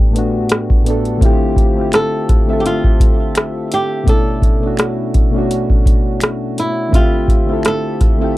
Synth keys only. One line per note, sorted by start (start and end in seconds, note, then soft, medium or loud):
0.00 0.11 A2 medium
0.00 0.13 A3 medium
0.00 0.15 B3 medium
0.00 0.17 D4 medium
0.00 1.24 G4 medium
0.11 0.58 A2 medium
0.11 0.59 A3 medium
0.11 0.60 B3 medium
0.17 0.61 D4 medium
0.17 0.62 F#4 medium
0.83 1.08 A2 medium
0.83 1.09 A3 medium
0.83 1.10 B3 medium
0.88 1.11 D4 medium
0.88 1.12 A4 medium
1.18 1.53 D3 medium
1.18 1.54 A3 medium
1.18 1.55 C4 medium
1.22 1.55 E4 medium
1.22 1.56 F4 medium
1.22 1.57 G4 loud
1.74 2.19 D3 medium
1.74 2.20 A3 medium
1.74 2.20 C4 medium
1.78 2.21 E4 medium
1.78 2.22 F4 medium
1.78 2.22 G4 medium
2.46 3.33 D3 medium
2.46 3.34 A3 medium
2.46 3.35 C4 medium
2.50 3.36 F4 medium
2.50 3.37 A4 medium
2.50 3.36 E5 medium
4.04 4.39 B2 medium
4.04 4.40 A3 medium
4.04 4.41 C#4 medium
4.09 4.42 D4 medium
4.09 4.43 E4 medium
4.60 5.04 B2 medium
4.60 5.05 A3 medium
4.60 5.06 C#4 medium
4.65 5.07 D4 medium
4.65 5.08 F#4 medium
5.31 6.19 B2 medium
5.31 6.20 A3 medium
5.31 6.21 C#4 medium
5.36 6.22 D4 medium
5.36 6.22 F#4 medium
6.89 7.24 D3 medium
6.89 7.25 A3 medium
6.89 7.26 C4 medium
6.94 7.28 F4 medium
6.94 7.28 G4 medium
6.94 7.27 E5 medium
7.46 7.90 D3 medium
7.46 7.91 A3 medium
7.46 7.92 C4 medium
7.50 7.93 E4 medium
7.50 7.93 F4 medium
7.50 7.94 A4 medium
8.17 8.38 D3 medium
8.17 8.38 A3 medium
8.17 8.38 C4 medium
8.21 8.38 E4 medium
8.21 8.38 F4 medium
8.21 8.38 G4 medium